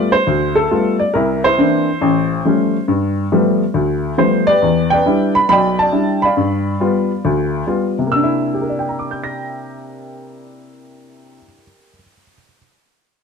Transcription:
Already playing: G3 A3 B3 F4 B4 D5
0.12 C5
0.27 D2
0.55 A4
0.71 G3 A3 B3 F4
0.99 D5
1.14 C2 E4 A#4
1.44 E4 C5
1.58 E3 A#3 C4 D4
2.02 A1
2.45 F3 G3 A3 C#4
2.88 G2
3.32 F3 G3 A3 B3
3.74 D2
4.18 F3 G3 A3 B3 C5
4.47 G4 B4 D5
4.62 E2
4.90 B4 D5 G5
5.06 G3 D4 E4
5.35 B5
5.49 B1 D5 G5 B5
5.79 D5 A5
5.92 G3 D4 E4
6.22 D5 F5 B5
6.37 G2
6.80 G3 B3 F4
7.25 D2
7.67 G3 B3 F4
7.99 C3
8.07 A#3
8.12 D4 E6
8.23 E4
8.54 G4
8.61 A#4
8.69 D5
8.79 G5
8.89 A#5
8.99 D6
9.11 G6
9.24 A#6

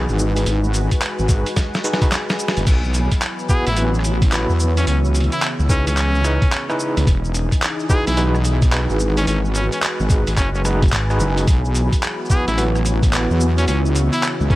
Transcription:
Already playing: E3 D#4 F#4 G#4 B4 F#5 G#5
0.09 G#1, shaker
0.19 shaker
0.36 closed hi-hat, shaker
0.46 G#1 G#3 F#4 G#4 B4, closed hi-hat, shaker
0.64 shaker
0.74 closed hi-hat, shaker
0.81 B5
0.91 kick, closed hi-hat, shaker
1.01 D#5, clap, closed hi-hat, shaker
1.19 G#1, shaker
1.29 D#4 F#4 G#4 B4, kick, closed hi-hat, shaker
1.46 closed hi-hat, shaker
1.56 kick, snare, closed hi-hat, shaker
1.74 snare, shaker
1.84 D#4 F#4 G#4 B4, closed hi-hat, shaker
1.93 snare
2.02 D#4 F#4 G#4 B4, kick, closed hi-hat, shaker
2.12 snare, clap, closed hi-hat, shaker
2.29 snare, shaker
2.39 shaker
2.48 snare
2.57 F#1, closed hi-hat, shaker
2.67 B1 E3 F#3 B3, kick, closed hi-hat, crash, shaker
2.84 shaker
2.94 closed hi-hat, shaker
3.12 kick, closed hi-hat, shaker
3.16 F#4 C#5
3.22 clap, closed hi-hat, shaker
3.39 shaker
3.49 B3 E4 F#4 G#4 B4, kick, shaker
3.55 E6
3.67 A1 E4, closed hi-hat, shaker
3.77 B3 E4 F#4 B4, closed hi-hat, shaker
3.94 shaker
3.99 cross-stick
4.04 closed hi-hat, shaker
4.22 kick, closed hi-hat, shaker
4.32 B3 E4 F#4 B4, clap, closed hi-hat, shaker
4.49 E2, shaker
4.60 shaker
4.77 C#4, closed hi-hat, shaker
4.87 C#2 C#3 C#4, closed hi-hat, shaker
5.05 shaker
5.12 G#4, closed hi-hat, shaker
5.20 closed hi-hat
5.24 closed hi-hat
5.32 E4, closed hi-hat, shaker
5.39 clap, closed hi-hat
5.42 closed hi-hat, shaker
5.59 C#2, shaker
5.69 C#4 D#4 E4 G#4 B4, kick, closed hi-hat, shaker
5.87 C#2 C#4, closed hi-hat, shaker
5.97 clap, closed hi-hat, shaker
6.15 shaker
6.25 D#4 E4 G#4 B4, cross-stick, closed hi-hat, shaker
6.42 kick, closed hi-hat
6.52 clap, closed hi-hat, shaker
6.70 D#4 E4 G#4 B4, cross-stick, shaker
6.80 shaker
6.97 C#2, closed hi-hat, shaker
7.07 E1 E3 D#4 G#4, kick, closed hi-hat, shaker
7.25 B4 F#5, shaker
7.35 closed hi-hat, shaker
7.43 G#5
7.52 kick, closed hi-hat, shaker
7.62 clap, closed hi-hat, shaker
7.80 shaker
7.89 D#4 F#4 G#4 B4, kick, shaker
8.07 B1 E4, closed hi-hat, shaker
8.17 D#4 F#4 G#4 B4, closed hi-hat, shaker
8.35 cross-stick, shaker
8.45 closed hi-hat, shaker
8.62 kick, closed hi-hat, shaker
8.72 D#4 F#4 G#4 B4, clap, closed hi-hat, shaker
8.90 G#1, shaker
9.00 shaker
9.17 C#4, closed hi-hat, shaker
9.27 G#1 G#3 C#4 F#4 G#4 B4, closed hi-hat, shaker
9.45 shaker
9.54 C#4, closed hi-hat, shaker
9.72 C#4, closed hi-hat, shaker
9.80 D#5, clap, closed hi-hat, shaker
10.00 G#1, shaker
10.10 D#4 F#4 G#4 B4, kick, closed hi-hat, shaker
10.27 G#1 B5, closed hi-hat, shaker
10.37 F#1 C#4, kick, clap, closed hi-hat, shaker
10.54 C#4, shaker
10.65 D#4 F#4 G#4 B4, cross-stick, closed hi-hat, shaker
10.82 kick, closed hi-hat
10.88 shaker
10.92 G#1, clap, closed hi-hat, shaker
11.10 D#4 F#4 G#4 B4, cross-stick, shaker
11.20 F#1, shaker
11.38 closed hi-hat, shaker
11.47 B1 E3 F#3 B3, kick, closed hi-hat, shaker
11.65 shaker
11.71 F#4
11.75 closed hi-hat, shaker
11.93 kick, closed hi-hat, shaker
12.03 clap, closed hi-hat, shaker
12.25 shaker
12.30 B3 E4 F#4 G#4 B4, kick, shaker
12.42 C#5
12.47 A1 E4 E6, closed hi-hat, shaker
12.58 B3 E4 F#4 B4, closed hi-hat, shaker
12.75 cross-stick, shaker
12.85 closed hi-hat, shaker
13.03 kick, closed hi-hat, shaker
13.13 B3 E4 F#4 B4, clap, closed hi-hat, shaker
13.30 E2, shaker
13.40 shaker
13.58 C#4, closed hi-hat, shaker
13.67 C#2 C#3 C#4, closed hi-hat, shaker
13.86 shaker
13.96 closed hi-hat, shaker
14.13 E4, closed hi-hat, shaker
14.23 clap, closed hi-hat, shaker
14.41 C#2, shaker
14.50 C#4 D#4 E4 G#4 B4, kick, closed hi-hat

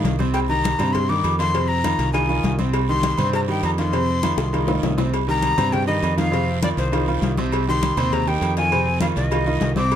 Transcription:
Already playing: D#3 D#4 F4 F5
0.04 C2, cowbell, high conga, low timbale, short guiro
0.19 C3 C4 C5, high conga, low agogo, short guiro
0.34 G5, cowbell, high conga, low agogo, long guiro
0.49 D#3 D#4 G4 A#5, high conga
0.64 cowbell, high conga, low agogo, short guiro
0.79 G2 C3 C4 C5, cowbell, high conga, low conga, low agogo, short guiro
0.93 C6, cowbell, high conga, low conga, long guiro
1.09 D#3 D#4 G4 D6, high conga, low agogo
1.24 F2, cowbell, high conga, low agogo, short guiro
1.39 D#3 D#4 F4 C6, cowbell, short guiro
1.54 C3 C4 C5, cowbell, high conga, low agogo, long guiro
1.68 A#5, high conga
1.84 D#3 D#4 F4, cowbell, high conga, low agogo, short guiro
1.99 C2, cowbell, high conga, short guiro
2.13 D#3 D#4 F4 G#5, cowbell, high conga, low agogo, long guiro
2.29 D#3 D#4 F4, high conga, low agogo
2.43 C2, cowbell, high conga, short guiro
2.58 C3 C4 C5, high conga, low agogo, short guiro
2.73 cowbell, high conga, low agogo, long guiro
2.89 D#3 D#4 G4 C6, high conga
3.03 cowbell, high conga, low agogo, short guiro
3.18 G2 C3 C4 C5, cowbell, high conga, low conga, low agogo, short guiro
3.33 A#5, cowbell, high conga, long guiro
3.48 D#3 D#4 G4 G5, high conga, low agogo
3.63 F2 A#5, cowbell, high conga, low timbale, low agogo, short guiro
3.78 D#3 D#4 F4 C6, cowbell, short guiro
3.93 C3 C4 C5, cowbell, high conga, low agogo, long guiro
4.09 high conga
4.23 D#3 D#4 F4, cowbell, high conga, low agogo, short guiro
4.37 C2, cowbell, high bongo, high conga, short guiro
4.53 D#3 D#4 F4, cowbell, high conga, low agogo, long guiro
4.67 D#3 D#4 F4, low bongo, high conga, low agogo
4.83 C2, cowbell, low bongo, high conga, short guiro
4.97 C3 C4 C5, low bongo, high conga, low agogo, short guiro
5.13 cowbell, high conga, low agogo, long guiro
5.28 D#3 D#4 G4 A#5, high conga
5.42 cowbell, high conga, low agogo, short guiro
5.58 G2 C3 C4 C5, cowbell, high conga, low conga, low agogo, short guiro
5.73 G5, cowbell, high conga, low conga, long guiro
5.87 D#3 D#4 G4 D#5, high conga, low agogo
6.03 F2, cowbell, high conga, low timbale, low agogo, short guiro
6.17 D#3 D#4 F4 F5, cowbell, high conga, short guiro
6.31 C3 C4 C5, cowbell, high conga, low agogo, long guiro
6.48 high conga
6.62 D#3 D#4 F4 D5, cowbell, high conga, low agogo, short guiro
6.77 C2 C5, cowbell, high conga, short guiro
6.92 D#3 D#4 F4, cowbell, high conga, low agogo, long guiro
7.08 D#3 D#4 F4, high conga, low agogo
7.22 C2, cowbell, high conga, short guiro
7.37 C3 C4 C5, high conga, low agogo, short guiro
7.52 cowbell, high conga, low agogo, long guiro
7.68 D#3 D#4 G4 C6, high conga
7.82 cowbell, high conga, low agogo, short guiro
7.97 D#2 C3 C4 C5, cowbell, high conga, low conga, low agogo, short guiro
8.12 A#5, cowbell, high conga, low conga, long guiro
8.27 D#3 D#4 G4 G5, high conga, low agogo
8.41 F2, cowbell, high conga, low agogo, short guiro
8.57 D#3 D#4 F4 G#5, cowbell, short guiro
8.71 C3 C4 C5, cowbell, high conga, low agogo, long guiro
8.86 high conga
9.00 D#3 D#4 F4 F5, cowbell, high conga, low agogo, short guiro
9.16 C2 D#5, cowbell, high conga, short guiro
9.31 D#3 D#4 F4, cowbell, high conga, low agogo, long guiro
9.46 D#3 D#4 F4, high conga, low agogo
9.61 C2, cowbell, high conga, low timbale, short guiro
9.76 C3 C4 C5 D6, high conga, low agogo, short guiro
9.91 cowbell, high conga, low agogo, long guiro

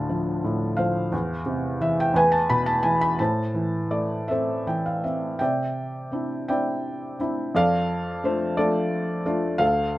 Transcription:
Already playing: D2 A2 D3 F5 A5
0.09 F3
0.44 A2
0.77 F3 C5 F5
1.12 E2
1.46 C3
1.81 E3 E5
2.00 G5
2.14 E2 B4 G#5
2.32 A5
2.50 B2 B5
2.66 A5
2.83 E3 G#5
3.01 B5
3.19 A2 C5 A5
3.54 E3
3.91 A3 D5
4.28 C4 A4 C5 E5
4.67 E3 G5
4.86 F5
5.04 C4 E5
5.39 C3 D5 E5 G5
6.12 C4 D4 E4
6.48 C4 D4 E4 D5 E5 G5
7.20 C4 D4 E4
7.55 F2 A4 D5 F5
8.24 A3 D4 F4 C5
8.57 A3 D4 F4 A4 D5
9.26 A3 D4 F4
9.58 D2 A4 F5

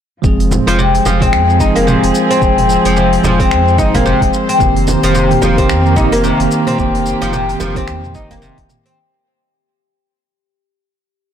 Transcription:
0.22 F1 F3 G#3 C4 G#4, kick, shaker
0.40 open hi-hat, shaker
0.48 C4, mid tom, frame drum, shaker
0.67 F1 F3, open hi-hat, shaker
0.79 C3, shaker
0.95 G#4, open hi-hat, shaker
1.06 F1 F3, frame drum, shaker
1.20 F3 G#3 C4 G#4, kick, mid tom, open hi-hat, shaker
1.32 F2, finger snap, shaker
1.50 shaker
1.59 F1 F3 G#3 C4 D#4 G#4, kick, shaker
1.76 A#3, open hi-hat, shaker
1.87 C3, mid tom, shaker
2.04 F1, open hi-hat, shaker
2.12 C5, shaker
2.30 C4, open hi-hat, shaker
2.40 F1 F3 G#3 C4 G#4, kick, shaker
2.58 mid tom, open hi-hat, shaker
2.70 shaker
2.85 F1 F3, open hi-hat, shaker
2.97 C3, shaker
3.13 open hi-hat, shaker
3.24 F1 F3, mid tom, frame drum, shaker
3.38 F3 G#3 C4 G#4, kick, open hi-hat, shaker
3.51 F2, finger snap, shaker
3.68 shaker
3.78 F1 D#4, kick, shaker
3.94 A#3, kick, mid tom, open hi-hat, shaker
4.06 C3, shaker
4.22 F1, kick, open hi-hat, shaker
4.33 shaker
4.49 C4, open hi-hat, shaker
4.58 F1 D#3 A#3 C4 G4, kick, mid tom, shaker
4.76 open hi-hat, shaker
4.82 A#3
4.87 frame drum, shaker
5.03 F1 F3, open hi-hat, shaker
5.15 C3, shaker
5.31 mid tom, open hi-hat, shaker
5.42 F1 F3, frame drum, shaker
5.57 D#3 A#3 C4 G4, kick, open hi-hat, shaker
5.69 F2, finger snap, shaker
5.86 shaker
5.93 F1 D#3 A#3 D#4 G4, kick, mid tom, shaker
5.97 C4 G4
6.12 A#3, open hi-hat, shaker
6.24 C3, shaker
6.40 F1, open hi-hat, shaker
6.51 shaker
6.67 C4, mid tom, open hi-hat, shaker
6.76 F1 D#3 A#3 C4 G4, kick, shaker
6.95 open hi-hat, shaker
7.06 shaker
7.22 F1 F3, open hi-hat, shaker
7.33 C3, mid tom, shaker
7.49 open hi-hat, shaker
7.60 F1 F3, frame drum, shaker
7.75 D#3 A#3 C4 G4, kick, open hi-hat, shaker
7.87 F2, finger snap, shaker
8.04 mid tom, shaker
8.15 F1 D#4, kick, shaker
8.31 A#3, kick, open hi-hat, shaker
8.42 C3, shaker
8.58 F1, kick, open hi-hat, shaker
8.69 mid tom, shaker
8.86 C4, open hi-hat, shaker

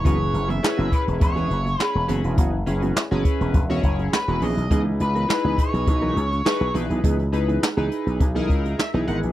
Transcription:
0.04 F#1 E3 B3 C#4 E4 F#4 G#4 B4 C#5, kick, closed hi-hat
0.20 muted clean electric guitar stroke
0.33 F#1, muted clean electric guitar stroke, closed hi-hat
0.48 E3 B3 C#4 G#4 E5, closed hi-hat
0.63 C#4 E4 G#4 B4, snare, clap
0.78 F#1 E3 B3 C#4 F#4, closed hi-hat
0.92 B4, kick, closed hi-hat
1.07 E1, muted clean electric guitar stroke, closed hi-hat
1.21 E1 C#5, muted clean electric guitar stroke, kick, closed hi-hat
1.36 E3 B3 C#4 G#4, closed hi-hat
1.50 F#1, muted clean electric guitar stroke, closed hi-hat
1.66 muted clean electric guitar stroke, closed hi-hat
1.79 C#4 E4 G#4 B4 C#5, muted clean electric guitar stroke, snare, clap
1.95 E1, muted clean electric guitar stroke
2.08 F#1 E3 B3 C#4 E4 F#4 G#4 B4, closed hi-hat
2.24 E1 E3 B3 C#4 F#4, closed hi-hat
2.37 F#1 E3 B3 C#4 F#4, kick, closed hi-hat
2.53 muted clean electric guitar stroke
2.66 F#1 C#4 E4 G#4 B4, muted clean electric guitar stroke, closed hi-hat
2.82 E3 B3 C#4 F#4, closed hi-hat
2.96 snare, clap
3.11 F#1 E3 B3 C#4 E4 F#4 G#4 B4
3.25 muted clean electric guitar stroke, kick, closed hi-hat
3.41 E1, muted clean electric guitar stroke, closed hi-hat
3.54 E1, muted clean electric guitar stroke, kick, closed hi-hat
3.70 E3 B3 C#4 E4 F#4 G#4 C#5
3.83 F#1, kick, closed hi-hat
3.99 muted clean electric guitar stroke, closed hi-hat
4.13 B4, muted clean electric guitar stroke, snare, clap
4.28 E1 E3 B3 C#4 E4 F#4 G#4 B4, closed hi-hat
4.41 A#1 E3 B3 C#4 G#4 D#5, open hi-hat
4.57 B1, muted clean electric guitar stroke, closed hi-hat
4.71 C#2 E3 B3 D#4 E4 G#4 B4 D#5, kick, closed hi-hat
4.87 muted clean electric guitar stroke
5.00 C#2 B4, muted clean electric guitar stroke, closed hi-hat
5.15 E3 B3 D#4 A#4, closed hi-hat
5.29 D#4 E4 G#4 B4, muted clean electric guitar stroke, snare, clap
5.44 C#2 E3 B3 D#4 G#4
5.58 C#5, kick, closed hi-hat
5.73 B1, muted clean electric guitar stroke, closed hi-hat
5.87 B1, muted clean electric guitar stroke, kick, closed hi-hat
6.02 E3 B3 D#4 A#4
6.16 C#2, closed hi-hat
6.31 muted clean electric guitar stroke, closed hi-hat
6.45 D#4 E4 G#4 B4, muted clean electric guitar stroke, snare, clap
6.61 B1, muted clean electric guitar stroke
6.74 A#1 E3 B3 D#4 E4 G#4 B4, closed hi-hat
6.90 B1 E3 B3 D#4 G#4, closed hi-hat
7.03 C#2 E3 B3 D#4 G#4, kick, closed hi-hat
7.19 muted clean electric guitar stroke, closed hi-hat
7.32 C#2 D#4 E4 G#4 B4, muted clean electric guitar stroke, closed hi-hat
7.48 E3 B3 D#4 G#4, closed hi-hat
7.62 muted clean electric guitar stroke, snare, clap
7.77 C#2 E3 B3 D#4 E4 G#4 B4, closed hi-hat
7.91 closed hi-hat
8.06 B1, muted clean electric guitar stroke, closed hi-hat
8.20 B1, muted clean electric guitar stroke, kick, closed hi-hat
8.35 E3 B3 D#4 E4 G#4 A#4, closed hi-hat
8.49 C#2, muted clean electric guitar stroke, kick, closed hi-hat
8.65 muted clean electric guitar stroke, closed hi-hat
8.79 E5, muted clean electric guitar stroke, snare, clap
8.94 B1 E3 B3 D#4 E4 G#4 B4, closed hi-hat
9.07 G#1 E3 B3 D#4 A#4 F#5, closed hi-hat
9.23 A#1, muted clean electric guitar stroke, closed hi-hat

